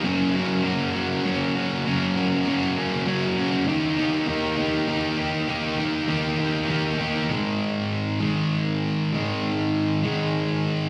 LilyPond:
\new Staff \with { instrumentName = "Distorted electric guitar" } { \time 6/8 \key ees \mixolydian \tempo 4. = 66 <ges bes des' ges'>8 <bes des' ges'>8 <ges bes des' ges'>8 <bes des' ges'>8 <ges bes des' ges'>8 <bes des' ges'>8 | <ges bes des' ges'>8 <bes des' ges'>8 <ges bes des' ges'>8 <bes des' ges'>8 <ges bes des' ges'>8 <bes des' ges'>8 | <ees bes ees' g'>8 <bes ees' g'>8 <ees bes ees' g'>8 <bes ees' g'>8 <ees bes ees' g'>8 <bes ees' g'>8 | <ees bes ees' g'>8 <bes ees' g'>8 <ees bes ees' g'>8 <bes ees' g'>8 <ees bes ees' g'>8 <bes ees' g'>8 |
<aes, ees aes>4. <aes, ees aes>4. | <aes, ees aes>4. <aes, ees aes>4. | }